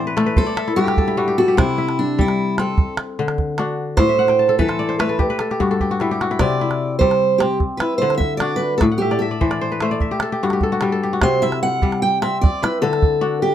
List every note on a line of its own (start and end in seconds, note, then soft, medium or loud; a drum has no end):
0.00 0.42 A2 medium
0.00 0.42 E3 medium
0.00 0.43 D4 medium
0.00 0.22 F#4 medium
0.00 0.32 C5 medium
0.00 0.46 D5 medium
0.00 0.56 E5 medium
0.00 0.42 F#5 medium
0.07 0.26 B4 medium
0.17 2.16 A3 medium
0.17 0.97 A4 medium
0.17 calabash click medium
0.26 1.49 B4 medium
0.36 0.76 A4 medium
0.36 1.55 C5 medium
0.36 calabash thump medium
0.47 1.57 D5 medium
0.57 1.60 E5 medium
0.57 calabash click medium
0.68 1.07 E4 medium
0.76 1.62 G2 medium
0.76 1.17 F#4 medium
0.76 1.33 G4 loud
0.87 1.24 G4 medium
0.87 calabash click medium
0.97 1.38 A4 medium
0.97 calabash thump medium
1.08 1.78 E4 medium
1.17 1.62 G3 medium
1.17 1.54 F#4 medium
1.28 1.48 G4 medium
1.38 1.58 F#4 medium
1.38 2.70 A4 medium
1.48 2.89 G4 medium
1.57 2.83 C3 medium
1.57 2.58 C4 medium
1.57 1.99 E4 medium
1.57 calabash thump medium
1.57 calabash click medium
1.78 3.35 E4 medium
1.78 calabash click soft
1.89 calabash click medium
1.99 2.19 D4 medium
2.19 2.83 G3 medium
2.19 2.59 E4 medium
2.19 calabash thump medium
2.28 calabash click medium
2.58 4.39 C4 medium
2.58 2.96 A4 medium
2.58 calabash click medium
2.78 calabash thump medium
2.97 calabash click medium
3.19 4.04 D3 medium
3.28 calabash click medium
3.38 calabash thump medium
3.58 5.27 D4 medium
3.58 4.35 F#4 medium
3.58 calabash click medium
3.97 5.24 A2 medium
3.97 4.54 C5 loud
3.97 calabash thump medium
3.97 calabash click medium
4.09 5.12 E5 medium
4.19 5.15 F#5 medium
4.28 5.22 G5 medium
4.28 calabash click soft
4.39 5.26 A5 medium
4.48 5.09 A4 medium
4.48 calabash click soft
4.59 5.24 E3 medium
4.59 4.99 A4 medium
4.59 4.95 B4 medium
4.59 calabash thump medium
4.59 calabash click soft
4.68 4.88 C5 medium
4.68 calabash click medium
4.79 5.90 D5 medium
4.89 5.36 C5 medium
4.89 calabash click soft
4.99 6.99 A3 medium
4.99 5.29 B4 medium
4.99 5.18 B4 medium
4.99 calabash click medium
5.09 5.40 A4 medium
5.19 5.51 G4 medium
5.19 calabash thump medium
5.19 calabash click soft
5.30 6.47 B4 medium
5.39 5.70 A4 medium
5.39 calabash click medium
5.51 5.80 G4 medium
5.51 calabash click soft
5.60 6.45 G2 medium
5.60 5.87 F#4 medium
5.60 calabash thump soft
5.71 7.03 A4 medium
5.80 6.11 G4 medium
5.80 calabash thump soft
5.91 6.17 F#4 medium
6.00 6.45 G3 medium
6.00 6.31 E4 medium
6.00 calabash click soft
6.11 7.53 G4 medium
6.21 7.07 F#4 medium
6.21 calabash click medium
6.31 6.61 E4 medium
6.39 7.66 C3 medium
6.39 7.41 C4 medium
6.39 6.98 D5 medium
6.39 calabash thump medium
6.39 calabash click medium
6.60 7.81 E4 medium
6.60 calabash click soft
6.71 calabash click soft
6.99 7.66 G3 medium
6.99 7.41 C5 medium
6.99 calabash thump medium
7.11 calabash click soft
7.38 9.21 C4 medium
7.38 7.58 G4 medium
7.38 calabash click medium
7.60 calabash thump medium
7.77 7.97 B4 medium
7.77 calabash click medium
7.81 9.38 E4 medium
7.98 8.86 D3 medium
7.98 8.17 C5 medium
8.10 calabash click medium
8.18 8.37 E5 medium
8.18 calabash thump medium
8.37 8.60 D5 medium
8.37 calabash click medium
8.41 10.09 D4 medium
8.41 9.88 F#4 medium
8.56 8.77 B4 medium
8.78 8.84 A4 loud
8.78 calabash thump medium
8.78 calabash click medium
8.82 10.06 A2 medium
8.91 9.88 F#5 medium
8.98 9.20 G4 medium
8.98 9.21 E5 medium
8.98 calabash click soft
9.11 9.31 D5 medium
9.11 calabash click soft
9.19 10.16 A4 medium
9.19 10.01 E5 medium
9.31 9.50 D5 medium
9.41 10.06 E3 medium
9.41 9.61 C5 medium
9.41 calabash thump medium
9.51 9.91 D5 medium
9.51 calabash click soft
9.61 9.82 C5 medium
9.72 10.95 B4 medium
9.80 11.82 A3 medium
9.80 11.01 C5 medium
9.80 calabash click medium
9.91 11.02 D5 medium
10.00 11.05 E5 medium
10.00 calabash thump medium
10.11 10.32 G4 medium
10.20 10.63 A4 medium
10.20 calabash click medium
10.32 10.53 G4 medium
10.43 11.27 G2 medium
10.43 10.72 F#4 medium
10.50 10.78 G4 medium
10.50 calabash click medium
10.61 10.92 A4 medium
10.61 calabash thump medium
10.72 11.09 F#4 medium
10.81 11.27 G3 medium
10.81 11.03 G4 medium
10.81 calabash click medium
10.92 12.24 A4 medium
11.03 12.45 G4 medium
11.13 11.89 F#4 medium
11.22 12.47 C3 medium
11.22 12.22 C4 medium
11.22 11.43 C5 loud
11.22 calabash thump medium
11.22 calabash click medium
11.42 12.62 E4 medium
11.42 11.62 E5 loud
11.42 calabash click soft
11.52 calabash click medium
11.63 12.02 F#5 medium
11.82 12.47 G3 medium
11.82 calabash thump medium
11.92 calabash click soft
12.02 12.22 G5 loud
12.22 13.55 C4 medium
12.22 12.41 E5 loud
12.22 calabash click medium
12.41 12.62 D5 medium
12.41 calabash thump medium
12.62 13.55 E4 medium
12.62 12.81 B4 medium
12.62 calabash click medium
12.82 13.55 D3 medium
12.82 13.38 A4 medium
12.93 calabash click medium
13.02 calabash thump medium
13.21 13.55 D4 medium
13.21 13.55 F#4 medium
13.42 13.55 G4 medium